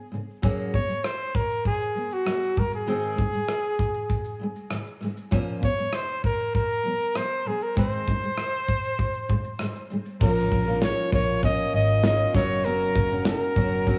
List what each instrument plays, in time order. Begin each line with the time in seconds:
0.12 steel-string acoustic guitar G#2 C#3 A#3
0.42 steel-string acoustic guitar F#3 A#3 C#4 F#4 G#4, kick, shaker
0.59 shaker
0.74 steel-string acoustic guitar F#3 A#3, trumpet C#5, kick
0.88 steel-string acoustic guitar F#3 A#3, shaker
1.04 trumpet C5, cross-stick, shaker
1.20 shaker
1.35 trumpet A#4, kick
1.50 shaker
1.65 trumpet G#4, kick, shaker
1.81 shaker
1.95 steel-string acoustic guitar F#3 A#3, shaker
2.11 trumpet F#4, shaker
2.25 steel-string acoustic guitar F#3 A#3, cross-stick, shaker
2.43 shaker
2.56 steel-string acoustic guitar G#2 D#3 G#3, trumpet A#4, kick
2.72 trumpet G#4, shaker
2.87 steel-string acoustic guitar G#2 D#3 G#3 C4 D#4 G#4, shaker
3.03 shaker
3.17 steel-string acoustic guitar G#2 D#3 G#3, kick
3.32 steel-string acoustic guitar G#2 D#3 G#3, shaker
3.48 cross-stick, shaker
3.64 shaker
3.79 kick
3.94 shaker
4.10 kick, shaker
4.25 shaker
4.39 steel-string acoustic guitar G#2 D#3 G#3
4.56 shaker
4.70 steel-string acoustic guitar G#2 D#3 G#3, cross-stick, shaker
4.87 shaker
5.01 steel-string acoustic guitar G#2 D#3 G#3, cross-stick
5.17 shaker
5.31 steel-string acoustic guitar A#2 F3 A#3 C#4 F4 C5, kick, shaker
5.48 shaker
5.62 steel-string acoustic guitar A#2 F3 A#3, trumpet C#5, kick, shaker
5.76 steel-string acoustic guitar A#2 F3 A#3, shaker
5.92 trumpet C5, cross-stick, shaker
6.08 shaker
6.24 trumpet A#4, kick
6.39 shaker
6.55 trumpet A#4, kick, shaker
6.70 shaker
6.83 steel-string acoustic guitar A#2 F3 A#3
7.00 shaker
7.14 steel-string acoustic guitar A#2 F3 A#3, trumpet C5, cross-stick, shaker
7.31 shaker
7.45 steel-string acoustic guitar A#2 F3 A#3, trumpet G#4
7.61 trumpet A#4, shaker
7.76 steel-string acoustic guitar G#2 D#3 G#3 C4 D#4 C5, trumpet C5, kick, shaker
7.92 shaker
8.07 steel-string acoustic guitar G#2 D#3 G#3, kick
8.22 steel-string acoustic guitar G#2 D#3 G#3, shaker
8.37 cross-stick, shaker
8.53 shaker
8.68 kick, shaker
8.83 shaker
8.99 kick, shaker
9.14 shaker
9.29 steel-string acoustic guitar G#2 D#3 G#3, kick
9.44 shaker
9.59 steel-string acoustic guitar G#2 D#3 G#3, cross-stick, shaker
9.76 shaker
9.90 steel-string acoustic guitar G#2 D#3 G#3, shaker
10.05 shaker
10.20 fingered electric bass A#1, clean electric guitar F3, steel-string acoustic guitar A#3 C#4 F4 A#4, trumpet A#4, kick, crash
10.36 shaker
10.52 fingered electric bass A#1, clean electric guitar A#3, kick
10.66 steel-string acoustic guitar A#3 C#4 F4 A#4, shaker
10.81 clean electric guitar C#4, trumpet C#5, snare, shaker
10.97 shaker
11.12 fingered electric bass A#1, steel-string acoustic guitar A#3 C#4 F4 A#4, clean electric guitar F4, trumpet C#5, kick, shaker
11.27 shaker
11.42 steel-string acoustic guitar A#3 C#4 F4 A#4, clean electric guitar A#3, trumpet D#5, kick, shaker
11.58 shaker
11.74 fingered electric bass G#1, clean electric guitar C#4, trumpet D#5
11.88 shaker
12.03 steel-string acoustic guitar A#3 C#4 F4 A#4, clean electric guitar F4, trumpet D#5, snare, shaker
12.19 shaker
12.34 fingered electric bass F#1, steel-string acoustic guitar F#3 C#4 F#4 A#4, clean electric guitar A#3, trumpet C#5, kick, snare
12.50 shaker
12.64 steel-string acoustic guitar F#3 C#4 F#4 A#4, clean electric guitar A#3, trumpet A#4, shaker
12.80 shaker
12.95 fingered electric bass F#1, clean electric guitar A#3, kick, shaker
13.10 steel-string acoustic guitar C#4 F#4 A#4, shaker
13.25 clean electric guitar C#4, trumpet A#4, snare, shaker
13.40 shaker
13.56 fingered electric bass F#1, steel-string acoustic guitar F#3 C#4 F#4 A#4, clean electric guitar F#4, kick, shaker
13.71 shaker
13.86 steel-string acoustic guitar F#3 C#4 F#4 A#4, clean electric guitar A#3, kick, shaker